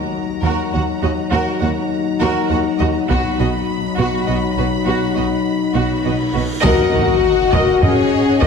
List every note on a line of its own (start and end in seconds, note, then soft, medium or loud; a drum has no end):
0.00 3.04 F#3 soft
0.00 3.05 D#4 soft
0.00 3.06 A#5 soft
0.42 0.50 D#2 soft
0.42 0.51 D#2 soft
0.42 0.72 F#4 soft
0.42 0.71 A#4 soft
0.73 0.81 D#2 soft
0.73 0.82 D#2 soft
0.73 0.81 F#4 soft
0.73 0.82 F#5 soft
1.02 1.10 D#2 soft
1.02 1.10 F#4 soft
1.02 1.11 D#5 soft
1.31 1.40 D#2 soft
1.31 1.41 D#2 soft
1.31 1.59 F#4 medium
1.31 1.60 A#4 soft
1.61 1.70 D#2 soft
1.61 1.69 F#4 soft
1.61 1.69 F#5 soft
2.20 2.28 D#2 medium
2.20 2.30 D#2 medium
2.20 2.49 F#4 medium
2.20 2.48 A#4 medium
2.50 2.58 D#2 soft
2.50 2.59 D#2 soft
2.50 2.59 F#4 soft
2.50 2.58 F#5 soft
2.79 2.88 D#2 soft
2.79 2.89 F#4 medium
2.79 2.87 D#5 medium
3.09 3.17 B1 medium
3.09 3.18 B2 medium
3.09 6.31 F#3 medium
3.09 6.30 D#4 medium
3.09 3.38 F#4 medium
3.09 6.40 B5 soft
3.09 taiko medium
3.39 3.47 B1 soft
3.39 3.47 B2 soft
3.39 3.48 F#4 soft
3.39 3.48 D#5 soft
3.98 4.06 B1 medium
3.98 4.07 B2 medium
3.98 4.26 F#4 soft
3.98 4.26 F#4 medium
4.27 4.35 B1 soft
4.27 4.36 B2 soft
4.27 4.37 F#4 soft
4.27 4.35 D#5 soft
4.56 4.64 B1 soft
4.56 4.67 B2 soft
4.56 4.66 F#4 soft
4.56 4.65 B4 soft
4.86 4.94 B1 soft
4.86 4.95 B2 soft
4.86 5.14 F#4 soft
4.86 5.15 F#4 soft
4.86 cymbal swell soft
5.15 5.24 B1 soft
5.15 5.24 B2 soft
5.15 5.25 F#4 soft
5.15 5.23 D#5 soft
5.75 5.83 B1 soft
5.75 5.83 B2 soft
5.75 6.03 F#4 soft
6.05 6.13 B1 soft
6.05 6.13 B2 soft
6.05 6.13 F#4 soft
6.05 6.14 D#5 soft
6.33 6.41 B1 soft
6.33 6.43 B2 soft
6.33 6.41 F#4 soft
6.33 6.44 B4 soft
6.62 6.92 D#2 medium
6.62 7.48 D#3 medium
6.62 8.47 D#4 loud
6.62 7.78 F#4 loud
6.62 8.47 F#4 medium
6.62 6.91 A#4 medium
6.62 6.91 A#4 loud
6.62 6.91 D#5 medium
6.62 8.47 D#5 loud
6.62 7.78 F#5 medium
6.62 8.47 F#5 medium
6.62 taiko medium
6.62 sub drop medium
6.93 7.82 F#4 medium
6.93 taiko low-mid soft
7.52 7.60 D#2 medium
7.52 7.61 D#2 medium
7.52 7.80 A#4 medium
7.52 7.80 D#5 medium
7.52 taiko medium
7.82 7.90 D#2 medium
7.82 8.42 C#4 medium
7.82 8.40 G#4 medium
7.82 7.91 A#4 medium
7.82 8.41 C#5 medium
7.82 7.91 D#5 medium
7.82 taiko low-mid medium
8.40 8.47 D#2 medium
8.40 8.47 D#4 medium
8.40 8.47 F#4 medium
8.40 8.47 A#4 medium
8.40 8.47 D#5 medium
8.40 taiko medium